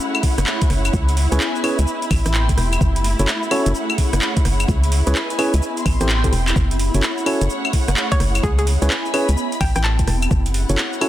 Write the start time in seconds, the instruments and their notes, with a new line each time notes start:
Already playing: ambient pad A3 C#4 E4 G#4, string section A3 E4 C#5 F#5
0.00 shaker
0.15 claves, shaker
0.23 kick, open hi-hat
0.38 fm bass F#1, cross-stick, closed hi-hat, shaker
0.47 clap, shaker
0.62 kick, closed hi-hat, shaker
0.70 fm bass F#1, cross-stick, open hi-hat
0.85 closed hi-hat, claves, shaker
0.93 fm bass C#2, kick, shaker
1.09 closed hi-hat, shaker
1.17 open hi-hat
1.32 fm bass C#2, tine electric piano C#4 E4 G#4 B4 C#5, closed hi-hat, shaker
1.37 string section B4 G#5, clap, shaker
1.55 shaker
1.64 tine electric piano C#4 E4 G#4 B4 C#5, open hi-hat, claves
1.79 fm bass C#2, closed hi-hat, shaker
1.87 shaker
2.02 closed hi-hat, shaker
2.11 fm bass A1, kick, open hi-hat, claves
2.26 fm bass A1, cross-stick, closed hi-hat, shaker
2.30 string section A3 G5 C6, clap, shaker
2.49 kick, closed hi-hat, shaker
2.58 fm bass E1, cross-stick, open hi-hat
2.73 closed hi-hat, claves, shaker
2.81 fm bass F#1, ambient pad A3 C#4 E4 G#4, kick, shaker
2.96 closed hi-hat, shaker
3.04 open hi-hat
3.19 fm bass F#1, tine electric piano C#4 E4 F#4 A4 C#5, closed hi-hat, shaker
3.28 string section F#5, clap, shaker
3.43 shaker
3.51 tine electric piano C#4 E4 F#4 A4 C#5, open hi-hat, claves
3.66 fm bass F#1, string section C#5, closed hi-hat, shaker
3.75 shaker
3.90 claves, shaker
3.98 kick, open hi-hat
4.13 fm bass F#1, cross-stick, closed hi-hat, shaker
4.22 clap, shaker
4.37 kick, closed hi-hat, shaker
4.45 fm bass F#1, cross-stick, open hi-hat
4.60 closed hi-hat, claves, shaker
4.68 fm bass C#2, kick, shaker
4.83 closed hi-hat, shaker
4.92 open hi-hat
5.05 fm bass C#2, tine electric piano C#4 E4 G#4 B4 C#5, string section B4, closed hi-hat, shaker
5.12 string section G#5, clap, shaker
5.30 closed hi-hat, shaker
5.39 tine electric piano C#4 E4 G#4 B4 C#5, open hi-hat, claves
5.54 fm bass C#2, closed hi-hat, shaker
5.62 shaker
5.77 string section C6, closed hi-hat, shaker
5.86 fm bass A1, kick, open hi-hat, claves
6.01 fm bass A1, tine electric piano C4 E4 G4 A4 C5, cross-stick, closed hi-hat, shaker
6.06 string section G5, clap, shaker
6.24 tine electric piano C4 E4 G4 A4 C5, kick, closed hi-hat, shaker
6.33 fm bass E1, open hi-hat
6.48 clap, closed hi-hat, claves, shaker
6.56 fm bass F#1, ambient pad A3 C#4 G#4, kick, shaker
6.71 closed hi-hat, shaker
6.79 open hi-hat
6.94 fm bass F#1, tine electric piano C#4 E4 F#4 A4 C#5, closed hi-hat, shaker
7.00 string section C#5 F#5, clap, shaker
7.18 shaker
7.26 tine electric piano C#4 E4 F#4 A4 C#5, open hi-hat, claves
7.41 fm bass F#1, closed hi-hat, shaker
7.50 shaker
7.65 claves, shaker
7.73 kick, open hi-hat
7.88 fm bass F#1, cross-stick, closed hi-hat, shaker
7.97 clap, shaker
8.12 synth pluck C#5, kick, closed hi-hat, shaker
8.20 fm bass F#1, cross-stick, open hi-hat
8.35 closed hi-hat, claves, shaker
8.43 fm bass C#2, ambient pad B3, synth pluck G#4, kick, shaker
8.59 synth pluck G#4, closed hi-hat, shaker
8.67 open hi-hat
8.82 fm bass C#2, tine electric piano C#4 E4 G#4 B4 C#5, closed hi-hat, shaker
8.87 string section G#5 B5, clap, shaker
9.05 shaker
9.14 tine electric piano C#4 E4 G#4 B4 C#5, open hi-hat, claves
9.29 fm bass C#2, closed hi-hat, shaker
9.37 shaker
9.52 closed hi-hat, shaker
9.61 fm bass A1, synth pluck G5, kick, open hi-hat, claves
9.76 fm bass A1, synth pluck G5, cross-stick, closed hi-hat, shaker
9.81 string section G5, synth pluck A5, clap, shaker
9.99 kick, closed hi-hat, shaker
10.07 fm bass E1, cross-stick, open hi-hat
10.22 closed hi-hat, claves, shaker
10.31 fm bass F#1, ambient pad A3 C#4 G#4, kick, shaker
10.46 string section F#5, closed hi-hat, shaker
10.54 open hi-hat
10.69 fm bass F#1, tine electric piano C#4 E4 F#4 A4 C#5, closed hi-hat, shaker
10.76 string section C#5, clap, shaker
10.93 shaker
11.01 tine electric piano C#4 E4 F#4 A4 C#5, open hi-hat, claves